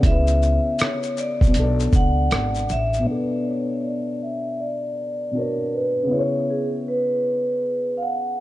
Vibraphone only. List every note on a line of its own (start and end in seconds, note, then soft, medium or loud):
0.06 0.83 E5 loud
0.81 1.19 C#5 medium
1.19 2.66 D5 medium
1.95 2.73 F#5 loud
2.72 3.09 E5 medium
3.09 3.47 D5 medium
3.47 3.85 C#5 medium
3.85 4.19 D5 medium
4.22 4.61 E5 medium
4.60 5.38 D5 medium
5.37 5.75 A#4 medium
5.74 6.13 B4 medium
6.12 6.51 C#5 medium
6.50 6.67 G#4 medium
6.88 7.93 B4 medium
7.97 8.02 F5 medium
8.03 8.40 F#5 medium